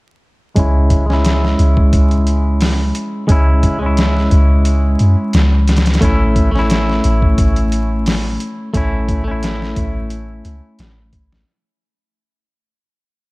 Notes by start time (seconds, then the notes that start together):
0.56 C#2 G#3 C#4 E4, kick, closed hi-hat
0.90 kick, closed hi-hat
1.06 G#3 C#4
1.10 E4, snare
1.25 snare, closed hi-hat
1.45 snare
1.59 C#2, closed hi-hat
1.77 kick
1.93 kick, closed hi-hat
2.11 closed hi-hat
2.27 closed hi-hat
2.61 snare, open hi-hat
2.95 closed hi-hat
3.28 C#2 G#3 C#4 E4, kick, closed hi-hat
3.63 kick, closed hi-hat
3.79 G#3 C#4
3.86 E4
3.97 snare, closed hi-hat
4.17 snare
4.31 C#2, kick, closed hi-hat
4.65 closed hi-hat
4.99 F#2, closed hi-hat
5.33 C#2, snare, closed hi-hat
5.68 snare, closed hi-hat
5.76 snare, closed hi-hat
5.86 snare, closed hi-hat
5.94 snare, closed hi-hat
6.01 A1 A3 C#4 E4, kick, closed hi-hat
6.36 kick, closed hi-hat
6.51 A3 C#4
6.56 E4, snare
6.70 snare, closed hi-hat
6.89 snare
7.04 A1, closed hi-hat
7.22 kick
7.38 kick, closed hi-hat
7.56 closed hi-hat
7.72 closed hi-hat
8.06 snare, open hi-hat
8.40 closed hi-hat
8.74 A1 A3 C#4 E4, kick, closed hi-hat
9.08 kick, closed hi-hat
9.24 A3 C#4
9.31 E4
9.43 snare, closed hi-hat
9.62 snare
9.76 A1, kick, closed hi-hat
10.10 closed hi-hat
10.45 C#2, closed hi-hat
10.79 A1, snare, closed hi-hat
11.13 kick, closed hi-hat
11.32 snare